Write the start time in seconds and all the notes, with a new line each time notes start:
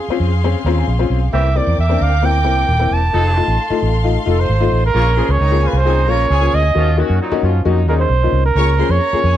Already playing: G#4 F5 C6
0.08 C4 C#4 F4, muted fingered electric bass stroke
0.20 F2
0.44 C4 C#4 G#4
0.65 D#2 C4 C#4 F4 A#5
0.78 G#5
0.88 A#1 F5
0.99 C4 C#4 F4
1.10 B1
1.33 C2 E3 A#3 C4 E4 G4 A#4 E5 G5 D6
1.55 A#3 C4 E4 D5
1.67 E2
1.78 E2 E5
1.89 A#3 C4 D4
2.01 D2 F5
2.22 A#3 C4 E4 G5
2.44 C2 A#3 C4 E4
2.69 D#1
2.79 A#3 C4 E4
2.91 E1 A5
3.13 F1 F3 A3 D#4 F4 A4 F5 C6
3.36 A3 D#4 F4
3.48 A1
3.70 A3 D#4 F4, muted fingered electric bass stroke
3.82 A1
4.04 A3 D#4 F4
4.26 F1 A3 D#4 F4
4.30 A4
4.40 C5
4.49 G#1
4.60 A3 D#4 F4
4.72 A1
4.86 A#4
4.94 A#1 C#3 A#3 C#4 F4 G#4 C#5 C#6
5.16 F3 A#3 C#4 F4 G#4 C5 C6
5.29 C#2 C#5
5.39 C#2 D#3 C4 D#4 A#4 A#5
5.51 A#3 C#4 F4 G#4
5.61 C#3 A#3 F4 G#4 G#5
5.68 B4
5.73 C2 C5
5.84 D#3 A#3 C4 C#4 D#4 F4 G#4 G#5
6.07 A#1 C#3 A#3 C#4 F4 A#4 C#5 A#5
6.29 C#2 F3 C#4 G#4 G#5
6.41 A#3 C#4 F4 G#4
6.53 D2 D#5
6.75 D#2 F3 A#3 C#4 D#4 F4 F#4
6.97 D#3 A#3 C#4 D#4 F#4
7.10 F#2
7.21 A#2 F#3 D#4
7.31 A#3 C#4 D#4 F#4, muted fingered electric bass stroke
7.43 F#2 F3 C#4 F4
7.65 F2 A#2 F#3 A#3 C#4 D#4 F#4
7.87 D#2 A#2 F#3 A#3 C#4 D#4 G#4 A#4
8.00 C5
8.09 B1
8.23 A#3 C#4 D#4 F4
8.32 C2
8.46 A#4
8.55 C#2 A#3 C#4 F4 G#4 C#5 C#6
8.78 A#3 C#4 F4 G#4 C5 C6
8.89 F2 C#5
9.01 A#4 A#5
9.13 A#3 C#4 F4 G#4, muted fingered electric bass stroke
9.23 F2 G#4 G#5